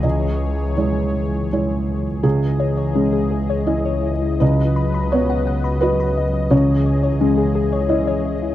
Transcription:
<<
  \new Staff \with { instrumentName = "Synth pluck" } { \time 3/4 \key cis \minor \tempo 4 = 84 r2. | cis'16 r16 cis''16 cis''16 cis'16 gis'16 gis'16 cis''16 cis'16 cis''16 e'16 e'16 | b'16 r16 b''16 b''16 b'16 fis''16 fis''16 b''16 b'16 b''16 dis''16 dis''16 | cis'16 r16 cis''16 cis''16 cis'16 gis'16 gis'16 cis''16 cis'16 cis''16 e'16 e'16 | }
  \new Staff \with { instrumentName = "Analog synth pad" } { \time 3/4 \key cis \minor << { cis''2. | dis''2.~ | dis''2.~ | dis''2. | } \\ { <e gis'>2. | <e gis'>2. | <fis b'>2. | <e gis'>2. | } >> }
  \new Staff \with { instrumentName = "Felt piano" } { \time 3/4 \key cis \minor << { dis''4 cis''4 r4 | gis'2. | dis''4 cis''4 b'4 | cis''2. | } \\ { cis,4 <gis e'>4 <gis e' cis''>4 | cis,4 gis4 <e' dis''>4 | cis,4 b4 <fis' dis''>4 | cis,4 gis4 <e' dis''>4 | } >> }
  \new Staff \with { instrumentName = "Double bass" } { \clef bass \time 3/4 \key cis \minor cis,2. | cis,2.~ | cis,2.~ | cis,2. | }
>>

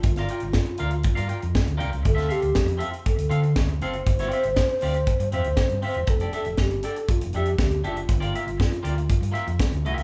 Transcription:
<<
  \new Staff \with { instrumentName = "Alto flute" } { \time 4/4 \key g \dorian \tempo 4 = 119 f'2.~ f'8 r8 | a'8 g'4 r8 a'4 r8 c''8~ | c''2~ c''8 c''4 c''8 | a'8 a'8 g'8 a'8 f'8 g'8 g'8 f'8~ |
f'2.~ f'8 r8 | }
  \new Staff \with { instrumentName = "Clean electric guitar" } { \time 4/4 \key g \dorian r16 <f' bes' d'' f''>16 <f' bes' d'' g''>16 r8. <f' bes' d'' f''>16 r8 <f' bes' d'' f''>16 <f' bes' d'' g''>16 r8. <f' bes' d'' g''>16 r16 | r16 <c' f' a' e''>16 <c' f' a' f''>16 r8. <c' f' a' e''>16 r8. <c' f' a' f''>16 r8. <c' f' a' f''>16 r16 | r16 <c' f' g' d''>16 <c' f' g' e''>16 r8. <c' f' g' d''>16 r8. <c' f' g' e''>16 r8. <c' f' g' e''>16 r16 | r16 <d' g' a' d''>16 <d' g' a' e''>16 r8. <d' g' a' d''>16 r8. <d' g' a' e''>16 r8. <d' g' a' e''>16 r16 |
r16 <bes f' g' d''>16 <bes f' g' e''>16 r8. <bes f' g' d''>16 r8. <bes f' g' e''>16 r8. <bes f' g' e''>8 | }
  \new Staff \with { instrumentName = "Fingered electric bass" } { \clef bass \time 4/4 \key g \dorian g,,8 r16 g,,16 r8 d,8 r16 g,16 r16 f,16 r16 d,16 c,16 cis,16 | d,8 r16 d,16 f,8 r8. d,16 d8 d,8 fis,,8 | g,,8 r16 g,,16 r8 d,8 r16 g,16 f,16 d,16 r16 g,16 r16 e,,16 | f,,8 r16 f,,16 g,,8 r8. f,,16 f,8 d,8 fis,,8 |
g,,8 r16 g,,16 r8 d,8 r16 g,16 r16 f,16 r16 d,16 c,16 cis,16 | }
  \new DrumStaff \with { instrumentName = "Drums" } \drummode { \time 4/4 <hh bd>16 <hh sn>16 hh16 hh16 <bd sn>16 hh16 hh16 hh16 <hh bd>16 hh16 hh16 hh16 <bd sn>16 hh16 hh16 hh16 | <hh bd>16 <hh sn>16 hh16 hh16 <bd sn>16 hh16 hh16 hh16 <hh bd>16 hh16 hh16 hh16 <bd sn>16 hh16 hh16 hh16 | <hh bd>16 <hh sn>16 hh16 hh16 <bd sn>16 hh16 hho16 hh16 <hh bd>16 hh16 hh16 hh16 <bd sn>16 hh16 hho16 hh16 | <hh bd>16 hh16 hh16 hh16 <bd sn>16 hh16 hh16 hh16 <hh bd>16 hh16 hh16 hh16 <bd sn>16 hh16 hh16 hh16 |
<hh bd>16 hh16 hh16 hh16 <bd sn>16 hh16 hh16 hh16 <hh bd>16 hh16 hh16 hh16 <bd sn>16 hh16 hh16 hh16 | }
>>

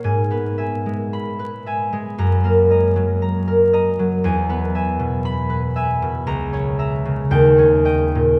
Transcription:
<<
  \new Staff \with { instrumentName = "Harp" } { \time 4/4 \key e \lydian \tempo 4 = 58 << { r4 b''4 ais''2 | r4 b''4 ais''4 g''4 | } \\ { gis''16 b'16 <e'' gis''>16 gis8 b'16 <e'' gis''>16 gis16 r16 ais'16 <dis'' ais''>16 fis16 ais''16 ais'16 <dis'' ais''>16 fis16 | gis''16 b'16 <e'' gis''>16 b,8 b'16 <e'' gis''>16 b,16 r16 cis''16 <e'' ais''>16 cis16 r16 cis''16 <dis'' g''>16 ais,16 | } >> }
  \new Staff \with { instrumentName = "Harp" } { \clef bass \time 4/4 \key e \lydian gis,16 b4.~ b16 fis,16 ais4.~ ais16 | e,16 b4.~ b16 cis,16 cis'8. dis,16 cis'8. | }
>>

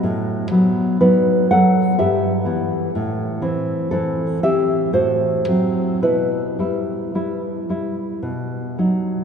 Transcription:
\new Staff \with { instrumentName = "Nylon-string guitar" } { \time 3/4 \key e \minor \tempo 4 = 59 << { r4 <dis' b'>8 <a' fis''>8 <g' e''>4 | r4 <c' a'>8 <g' e''>8 <fis' c''>4 | <e' b'>2 r4 | } \\ { a,8 <fis b>8 <fis b>8 <fis b>8 g,8 <e b>8 | a,8 <e c'>8 e8 <e c'>8 a,8 <fis c'>8 | b,8 <g e'>8 <g e'>8 <g e'>8 b,8 <fis dis'>8 | } >> }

